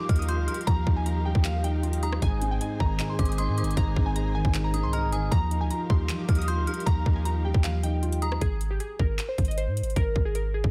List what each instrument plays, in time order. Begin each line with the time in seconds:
Already playing: felt piano F3 G3 D#4 F4, string section D#4 G4 A#4 F5
0.00 synth keys D6
0.09 808-style bass D#2, felt piano D#4, synth bell F6, kick, closed hi-hat
0.16 synth keys D#6, closed hi-hat
0.22 closed hi-hat
0.28 felt piano F4, synth keys C6, synth bell G6, closed hi-hat
0.38 808-style bass D2
0.48 felt piano G3, synth bell F6, closed hi-hat
0.54 closed hi-hat
0.61 closed hi-hat
0.67 808-style bass D#2, felt piano F3, synth keys A#5, kick, closed hi-hat
0.87 808-style bass D#2, felt piano D#4, kick
0.96 synth keys G#5
1.06 felt piano F4, synth keys A#5, closed hi-hat
1.25 felt piano G3, synth keys G5
1.35 808-style bass D#2, kick
1.44 felt piano F3, synth keys F5, clap, closed hi-hat
1.64 felt piano D#4, synth keys G5, closed hi-hat
1.83 felt piano F4, closed hi-hat
1.93 closed hi-hat
2.03 felt piano G3, synth keys A#5, synth bell D#6, closed hi-hat
2.12 cross-stick
2.22 808-style bass G#1, felt piano G#2, string section G#4 C5 G#5, synth keys G#5, kick, closed hi-hat
2.42 felt piano C4, closed hi-hat
2.51 synth keys G5
2.61 felt piano D#4, synth keys G#5, closed hi-hat
2.80 808-style bass G#1, felt piano D#3, synth keys A#5, kick
3.00 felt piano G#2, clap, closed hi-hat
3.09 synth keys C6
3.19 808-style bass G#1, felt piano C4, synth bell D6, kick, closed hi-hat
3.25 synth keys D#6, closed hi-hat
3.32 closed hi-hat
3.38 felt piano D#4, synth keys C6, synth bell D#6, closed hi-hat
3.48 808-style bass G#2
3.58 felt piano D#3, synth bell D6, closed hi-hat
3.62 808-style bass G#1, closed hi-hat
3.71 closed hi-hat
3.77 808-style bass G#1, felt piano G#2, synth keys A#5, kick, closed hi-hat
3.96 808-style bass G#1, felt piano C4, kick
4.06 synth keys G#5
4.16 felt piano D#4, synth keys A#5, closed hi-hat
4.35 felt piano D#3, synth keys G#5
4.45 808-style bass G#1, kick
4.54 felt piano G#2, clap, closed hi-hat
4.64 synth keys A#5
4.74 felt piano C4, synth bell D#6, closed hi-hat
4.83 808-style bass C2, synth keys C6
4.93 felt piano D#4, synth keys A#5, synth bell F6, closed hi-hat
5.08 808-style bass G#1
5.12 felt piano D#3, synth keys G#5, synth bell D#6, closed hi-hat
5.31 808-style bass D#2, felt piano F3, string section D#4 G4 A#4 F5, synth keys A#5, kick, closed hi-hat
5.51 felt piano D#4, closed hi-hat
5.61 808-style bass D2, synth keys G#5
5.71 felt piano F4, synth keys A#5, closed hi-hat
5.90 808-style bass D#2, felt piano G3, synth keys C6, kick
6.09 felt piano F3, clap, closed hi-hat
6.19 synth keys D6
6.29 808-style bass D#2, felt piano D#4, synth bell F6, kick, closed hi-hat
6.35 synth keys D#6, closed hi-hat
6.42 closed hi-hat
6.48 felt piano F4, synth keys C6, synth bell G6, closed hi-hat
6.58 808-style bass D2
6.67 felt piano G3, synth bell F6, closed hi-hat
6.74 closed hi-hat
6.80 closed hi-hat
6.86 808-style bass D#2, felt piano F3, synth keys A#5, kick, closed hi-hat
7.06 808-style bass D#2, felt piano D#4, kick
7.16 synth keys G#5
7.25 felt piano F4, synth keys A#5, closed hi-hat
7.45 felt piano G3, synth keys G5
7.54 808-style bass D#2, kick
7.64 felt piano F3, synth keys F5, clap, closed hi-hat
7.83 felt piano D#4, synth keys G5, closed hi-hat
8.02 felt piano F4, closed hi-hat
8.12 closed hi-hat
8.22 felt piano G3, synth keys A#5, synth bell D#6, closed hi-hat
8.32 cross-stick
8.41 808-style bass G#1, synth keys G#4, kick, closed hi-hat
8.61 closed hi-hat
8.71 synth keys G4
8.80 synth keys G#4, closed hi-hat
8.99 808-style bass G#1, synth keys A#4, kick
9.19 clap, closed hi-hat
9.29 synth keys C5
9.38 808-style bass G#1, kick, closed hi-hat
9.45 synth keys D#5, closed hi-hat
9.51 closed hi-hat
9.58 synth keys C5, closed hi-hat
9.67 808-style bass G#2
9.77 closed hi-hat
9.82 808-style bass G#1, closed hi-hat
9.90 closed hi-hat
9.96 808-style bass G#1, synth keys A#4, kick, closed hi-hat
10.16 808-style bass G#1, kick
10.25 synth keys G#4
10.35 synth keys A#4, closed hi-hat
10.54 synth keys G#4
10.64 808-style bass G#1, kick